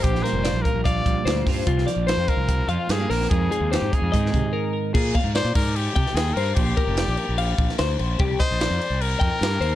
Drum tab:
CC |----------------|----------------|----------------|x-x-x-x-x-x-x-x-|
HH |x-x-x-x-x-x-x-o-|x-x-x-x-x-x-x-o-|x-x-x-x-x-x-----|----------------|
SD |-oo-o-------o-o-|-oo-o-------o-oo|----o----o------|----o------oo---|
BD |o-----o-o-o---o-|o-----o-o-------|o-----o-o-o-----|o-o---o---o-----|

CC |x-x-x-x-x-x-x-x-|x-x-x-x-x-x-x-x-|
HH |----------------|----------------|
SD |----o------oo---|----o-------o---|
BD |o-o-------o-----|o-o-------o-----|